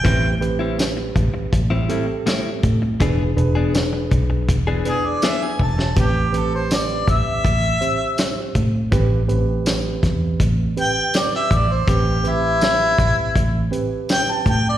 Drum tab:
HH |x-x-x-x-x-x-x-x-|x-x-x-x-x-x-x---|x-x-x-x-x-x-x-x-|x-x-x-x-x-x-x-x-|
TB |----x-------x---|----x-------x---|----x-------x---|----x-------x---|
SD |----o-------o---|----o-------o--o|----o-------o---|----o-o-----oo--|
BD |o-----o-o-----o-|o-----o-o-----o-|o-----o-o-----o-|o-----o-o-----o-|

HH |x-x-x-x-x-x-x-x-|
TB |----x-------x---|
SD |----o-------o---|
BD |o-----o-o-----o-|